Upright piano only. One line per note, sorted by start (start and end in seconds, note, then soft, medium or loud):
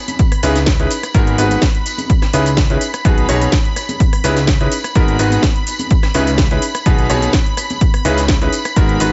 0.43 0.57 C#3 medium
0.43 0.57 C#4 medium
0.43 0.57 D#4 medium
0.43 0.57 E4 medium
0.43 0.57 G#4 medium
0.43 0.57 B4 loud
0.80 0.89 C#4 medium
0.80 0.89 D#4 medium
0.80 0.89 E4 medium
0.80 0.89 G#4 medium
0.80 0.89 B4 medium
1.15 1.35 G#2 medium
1.15 1.35 B3 medium
1.15 1.35 D#4 medium
1.15 1.35 F#4 medium
1.15 1.35 G#4 medium
1.15 1.35 A#4 loud
1.38 1.59 G#2 medium
1.38 1.59 B3 medium
1.38 1.59 D#4 medium
1.38 1.59 F#4 medium
1.38 1.59 G#4 medium
1.38 1.59 B4 loud
2.34 2.47 C#3 loud
2.34 2.47 C#4 medium
2.34 2.47 D#4 medium
2.34 2.47 E4 medium
2.34 2.47 G#4 medium
2.34 2.47 B4 loud
2.70 2.80 C#4 medium
2.70 2.80 D#4 medium
2.70 2.80 E4 medium
2.70 2.80 G#4 medium
2.70 2.80 B4 medium
3.05 3.25 B2 medium
3.05 3.25 B3 medium
3.05 3.25 D#4 medium
3.05 3.25 F#4 medium
3.05 3.25 G#4 medium
3.05 3.25 B4 loud
3.29 3.49 B2 medium
3.29 3.49 B3 medium
3.29 3.49 D#4 medium
3.29 3.49 F#4 medium
3.29 3.49 G#4 medium
3.29 3.49 C#5 loud
4.24 4.38 C#3 medium
4.24 4.38 C#4 medium
4.24 4.38 D#4 medium
4.24 4.38 E4 medium
4.24 4.38 G#4 medium
4.24 4.38 B4 loud
4.61 4.70 C#4 medium
4.61 4.70 D#4 medium
4.61 4.70 E4 medium
4.61 4.70 G#4 medium
4.61 4.70 B4 medium
4.95 5.16 G#2 medium
4.95 5.16 B3 medium
4.95 5.16 D#4 medium
4.95 5.16 F#4 medium
4.95 5.16 G#4 medium
4.95 5.16 A#4 loud
5.19 5.40 G#2 medium
5.19 5.40 B3 medium
5.19 5.40 D#4 medium
5.19 5.40 F#4 medium
5.19 5.40 G#4 medium
5.19 5.40 B4 loud
6.14 6.28 C#3 medium
6.14 6.28 C#4 medium
6.14 6.28 D#4 medium
6.14 6.28 E4 medium
6.14 6.28 G#4 medium
6.14 6.28 B4 loud
6.51 6.61 C#4 medium
6.51 6.61 D#4 medium
6.51 6.61 E4 medium
6.51 6.61 G#4 medium
6.51 6.61 B4 medium
6.86 7.06 B2 loud
6.86 7.06 B3 medium
6.86 7.06 D#4 medium
6.86 7.06 F#4 medium
6.86 7.06 G#4 medium
6.86 7.06 B4 loud
7.10 7.30 B2 loud
7.10 7.30 B3 medium
7.10 7.30 D#4 medium
7.10 7.30 F#4 medium
7.10 7.30 G#4 medium
7.10 7.30 C#5 loud
8.05 8.18 C#3 loud
8.05 8.19 C#4 medium
8.05 8.19 D#4 medium
8.05 8.19 E4 medium
8.05 8.19 G#4 medium
8.05 8.19 B4 loud
8.42 8.51 C#4 medium
8.42 8.51 D#4 medium
8.42 8.51 E4 medium
8.42 8.51 G#4 medium
8.42 8.51 B4 medium
8.76 8.97 G#2 loud
8.76 8.97 B3 medium
8.76 8.97 D#4 medium
8.76 8.97 F#4 medium
8.76 8.97 G#4 medium
8.76 8.97 A#4 loud
9.00 9.12 G#2 medium
9.00 9.12 B3 medium
9.00 9.12 D#4 medium
9.00 9.12 F#4 medium
9.00 9.12 G#4 medium
9.00 9.12 B4 loud